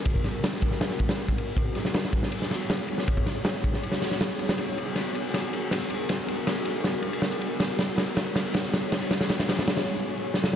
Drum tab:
RD |x-x-x-x-x-xx-xx-|x-x-x-x-x-x-x-x-|x-x-x-x-x---x-xx|x-x-x-x-x-x-x-x-|
HH |----------------|----------------|----------o-----|----------------|
SD |--o-oo-ooo-oo---|--oooo-o-oo-oo-o|--o-oo-o-ooooo-o|o---o---o---o---|
BD |oo----o---o--o--|o-----o---------|oo----o---------|----------------|

RD |x-x-x-x-x-xx-xx-|x-x-x-x-x-x-x-xx|xxxxx-x---------|
HH |----------------|----------------|----------------|
SD |o---o---o---o---|o-o-o-o-o-o-o-o-|oooooooo-----oo-|
BD |----------------|----------------|----------------|